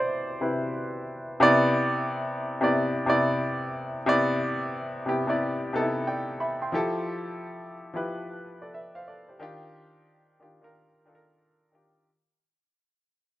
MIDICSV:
0, 0, Header, 1, 2, 480
1, 0, Start_track
1, 0, Key_signature, 0, "major"
1, 0, Tempo, 666667
1, 1006, Time_signature, 4, 2, 24, 8
1, 9648, End_track
2, 0, Start_track
2, 0, Title_t, "Grand piano"
2, 0, Program_c, 0, 0
2, 0, Control_c, 0, 64, 127
2, 0, Note_on_c, 0, 47, 44
2, 0, Note_on_c, 0, 48, 45
2, 0, Note_on_c, 0, 64, 55
2, 0, Note_on_c, 0, 72, 69
2, 0, Note_on_c, 0, 74, 74
2, 283, Note_off_c, 0, 48, 0
2, 288, Note_off_c, 0, 64, 0
2, 294, Note_on_c, 0, 48, 45
2, 298, Note_on_c, 0, 71, 43
2, 299, Note_on_c, 0, 64, 50
2, 506, Note_off_c, 0, 48, 0
2, 509, Note_off_c, 0, 64, 0
2, 509, Note_off_c, 0, 71, 0
2, 740, Note_off_c, 0, 72, 0
2, 980, Note_off_c, 0, 47, 0
2, 1008, Note_on_c, 0, 48, 93
2, 1014, Note_on_c, 0, 59, 86
2, 1016, Control_c, 0, 64, 0
2, 1021, Note_on_c, 0, 64, 83
2, 1022, Note_off_c, 0, 74, 0
2, 1027, Note_on_c, 0, 74, 106
2, 1149, Control_c, 0, 64, 127
2, 1722, Note_off_c, 0, 48, 0
2, 1725, Note_off_c, 0, 59, 0
2, 1729, Note_off_c, 0, 64, 0
2, 1731, Note_off_c, 0, 74, 0
2, 1878, Note_on_c, 0, 48, 79
2, 1884, Note_on_c, 0, 59, 71
2, 1891, Note_on_c, 0, 64, 67
2, 1899, Note_on_c, 0, 74, 79
2, 2166, Note_off_c, 0, 48, 0
2, 2169, Note_off_c, 0, 59, 0
2, 2173, Note_off_c, 0, 64, 0
2, 2176, Note_off_c, 0, 74, 0
2, 2204, Note_on_c, 0, 48, 83
2, 2212, Note_on_c, 0, 59, 68
2, 2220, Note_on_c, 0, 64, 75
2, 2228, Note_on_c, 0, 74, 94
2, 2845, Note_off_c, 0, 48, 0
2, 2849, Note_off_c, 0, 59, 0
2, 2853, Note_off_c, 0, 64, 0
2, 2857, Note_off_c, 0, 74, 0
2, 2924, Note_on_c, 0, 48, 96
2, 2931, Note_on_c, 0, 59, 88
2, 2938, Note_on_c, 0, 64, 88
2, 2944, Note_on_c, 0, 74, 105
2, 3565, Note_off_c, 0, 48, 0
2, 3568, Note_off_c, 0, 59, 0
2, 3572, Note_off_c, 0, 64, 0
2, 3575, Note_off_c, 0, 74, 0
2, 3642, Note_on_c, 0, 48, 69
2, 3649, Note_on_c, 0, 59, 61
2, 3655, Note_on_c, 0, 64, 59
2, 3663, Note_on_c, 0, 67, 79
2, 3773, Note_off_c, 0, 48, 0
2, 3776, Note_off_c, 0, 59, 0
2, 3779, Note_off_c, 0, 64, 0
2, 3783, Note_off_c, 0, 67, 0
2, 3794, Note_on_c, 0, 48, 73
2, 3801, Note_on_c, 0, 59, 66
2, 3809, Note_on_c, 0, 64, 66
2, 3814, Note_on_c, 0, 74, 75
2, 4084, Note_off_c, 0, 48, 0
2, 4088, Note_off_c, 0, 59, 0
2, 4091, Note_off_c, 0, 64, 0
2, 4094, Note_off_c, 0, 74, 0
2, 4126, Note_on_c, 0, 48, 81
2, 4131, Note_on_c, 0, 59, 77
2, 4138, Note_on_c, 0, 63, 57
2, 4145, Note_on_c, 0, 69, 90
2, 4186, Note_on_c, 0, 64, 77
2, 4191, Note_off_c, 0, 63, 0
2, 4372, Note_on_c, 0, 79, 61
2, 4379, Note_on_c, 0, 74, 47
2, 4553, Note_off_c, 0, 48, 0
2, 4555, Note_off_c, 0, 59, 0
2, 4562, Note_off_c, 0, 69, 0
2, 4582, Note_off_c, 0, 64, 0
2, 4597, Note_off_c, 0, 79, 0
2, 4601, Note_off_c, 0, 74, 0
2, 4610, Note_on_c, 0, 83, 59
2, 4614, Note_on_c, 0, 76, 56
2, 4752, Note_off_c, 0, 83, 0
2, 4754, Note_off_c, 0, 76, 0
2, 4765, Note_on_c, 0, 84, 57
2, 4768, Note_on_c, 0, 79, 50
2, 4839, Note_on_c, 0, 53, 85
2, 4848, Note_on_c, 0, 64, 75
2, 4854, Control_c, 0, 64, 0
2, 4856, Note_on_c, 0, 67, 83
2, 4863, Note_on_c, 0, 69, 93
2, 4989, Note_off_c, 0, 84, 0
2, 4991, Note_off_c, 0, 79, 0
2, 4992, Control_c, 0, 64, 127
2, 5558, Note_off_c, 0, 53, 0
2, 5562, Note_off_c, 0, 64, 0
2, 5566, Note_off_c, 0, 67, 0
2, 5569, Note_off_c, 0, 69, 0
2, 5714, Note_on_c, 0, 53, 70
2, 5722, Note_on_c, 0, 64, 63
2, 5729, Note_on_c, 0, 67, 70
2, 5735, Note_on_c, 0, 71, 77
2, 6004, Note_off_c, 0, 53, 0
2, 6008, Note_off_c, 0, 64, 0
2, 6011, Note_off_c, 0, 67, 0
2, 6014, Note_off_c, 0, 71, 0
2, 6205, Note_on_c, 0, 74, 57
2, 6211, Note_on_c, 0, 69, 45
2, 6285, Note_off_c, 0, 74, 0
2, 6288, Note_off_c, 0, 69, 0
2, 6294, Note_on_c, 0, 76, 61
2, 6299, Note_on_c, 0, 71, 51
2, 6434, Note_off_c, 0, 76, 0
2, 6437, Note_off_c, 0, 71, 0
2, 6445, Note_on_c, 0, 77, 64
2, 6452, Note_on_c, 0, 72, 49
2, 6525, Note_off_c, 0, 77, 0
2, 6529, Note_off_c, 0, 72, 0
2, 6536, Note_on_c, 0, 74, 56
2, 6542, Note_on_c, 0, 69, 47
2, 6675, Note_off_c, 0, 74, 0
2, 6678, Note_off_c, 0, 69, 0
2, 6686, Note_on_c, 0, 72, 51
2, 6691, Note_on_c, 0, 67, 47
2, 6765, Note_on_c, 0, 51, 89
2, 6772, Note_on_c, 0, 62, 79
2, 6774, Control_c, 0, 64, 0
2, 6775, Note_off_c, 0, 67, 0
2, 6778, Note_on_c, 0, 65, 85
2, 6786, Note_on_c, 0, 67, 94
2, 6899, Control_c, 0, 64, 127
2, 6910, Note_off_c, 0, 72, 0
2, 7405, Note_off_c, 0, 51, 0
2, 7409, Note_off_c, 0, 62, 0
2, 7412, Note_off_c, 0, 65, 0
2, 7416, Note_off_c, 0, 67, 0
2, 7486, Note_on_c, 0, 51, 65
2, 7492, Note_on_c, 0, 62, 60
2, 7499, Note_on_c, 0, 65, 59
2, 7506, Note_on_c, 0, 67, 72
2, 7615, Note_off_c, 0, 51, 0
2, 7618, Note_off_c, 0, 62, 0
2, 7621, Note_off_c, 0, 65, 0
2, 7625, Note_off_c, 0, 67, 0
2, 7640, Note_on_c, 0, 51, 64
2, 7645, Note_on_c, 0, 62, 58
2, 7653, Note_on_c, 0, 65, 65
2, 7662, Note_on_c, 0, 70, 76
2, 7927, Note_off_c, 0, 51, 0
2, 7930, Note_off_c, 0, 62, 0
2, 7933, Note_off_c, 0, 65, 0
2, 7938, Note_off_c, 0, 70, 0
2, 7960, Note_on_c, 0, 51, 72
2, 7966, Note_on_c, 0, 62, 65
2, 7975, Note_on_c, 0, 65, 65
2, 7980, Note_on_c, 0, 69, 63
2, 8027, Note_on_c, 0, 70, 79
2, 8032, Note_off_c, 0, 69, 0
2, 8390, Note_off_c, 0, 51, 0
2, 8393, Note_off_c, 0, 62, 0
2, 8397, Note_off_c, 0, 65, 0
2, 8423, Note_off_c, 0, 70, 0
2, 8438, Note_on_c, 0, 51, 62
2, 8444, Note_on_c, 0, 62, 59
2, 8452, Note_on_c, 0, 65, 54
2, 8458, Note_on_c, 0, 67, 74
2, 8655, Note_off_c, 0, 51, 0
2, 8658, Note_off_c, 0, 62, 0
2, 8662, Note_off_c, 0, 65, 0
2, 8665, Note_off_c, 0, 67, 0
2, 8696, Control_c, 0, 64, 0
2, 9648, End_track
0, 0, End_of_file